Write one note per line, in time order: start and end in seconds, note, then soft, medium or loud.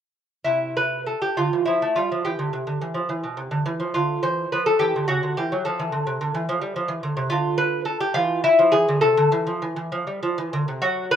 0.44 1.12 C3 medium
0.44 0.75 E4 medium
0.77 1.06 B4 loud
1.06 1.21 A4 medium
1.22 1.37 G4 medium
1.37 1.52 D3 medium
1.37 1.65 F4 medium
1.53 1.67 E3 medium
1.66 1.82 F3 medium
1.66 1.95 E4 medium
1.82 1.96 A3 medium
1.96 2.11 G3 medium
1.96 2.24 F4 medium
2.12 2.25 F3 medium
2.25 2.38 E3 medium
2.25 3.78 G4 medium
2.39 2.53 D3 medium
2.53 2.66 C3 medium
2.67 2.81 D3 medium
2.81 2.95 E3 medium
2.94 3.09 F3 medium
3.09 3.23 E3 medium
3.24 3.38 B2 medium
3.37 3.51 C3 medium
3.51 3.65 D3 medium
3.66 3.81 E3 medium
3.80 3.95 F3 medium
3.94 4.16 D3 medium
3.94 4.23 F4 medium
4.23 4.44 E3 medium
4.23 4.51 C5 medium
4.52 4.74 F3 medium
4.52 4.66 B4 medium
4.66 4.81 A4 medium
4.79 4.95 E3 medium
4.79 5.07 G4 loud
4.96 5.08 D3 medium
5.08 5.23 C#3 medium
5.08 5.36 F#4 loud
5.23 5.37 D3 medium
5.37 5.51 E3 medium
5.37 5.64 G4 medium
5.52 5.65 F#3 medium
5.65 5.79 F3 medium
5.65 7.14 A4 medium
5.80 5.92 E3 medium
5.92 6.06 D3 medium
6.07 6.20 C3 medium
6.21 6.34 D3 medium
6.34 6.48 E3 medium
6.49 6.61 F3 medium
6.61 6.75 G3 medium
6.76 6.89 F3 medium
6.88 7.03 E3 medium
7.03 7.16 D3 medium
7.17 7.31 C3 medium
7.30 7.93 D3 medium
7.30 7.58 F4 medium
7.58 7.85 B4 loud
7.85 8.00 A4 loud
8.00 8.16 G4 loud
8.14 8.47 E3 medium
8.14 8.43 F4 loud
8.44 8.73 E4 loud
8.59 8.74 F3 medium
8.72 8.88 E3 medium
8.72 9.01 G#4 loud
8.88 9.02 D3 medium
9.01 9.17 C3 medium
9.01 10.60 A4 loud
9.17 9.31 D3 loud
9.32 9.47 E3 loud
9.47 9.61 F3 medium
9.62 9.75 E3 medium
9.76 9.91 E3 medium
9.92 10.06 F3 medium
10.07 10.21 G3 medium
10.23 10.36 F3 medium
10.38 10.51 E3 medium
10.53 10.66 D3 medium
10.68 10.81 C3 medium
10.82 11.16 F#3 medium
10.82 11.10 F#4 loud
11.11 11.16 B4 loud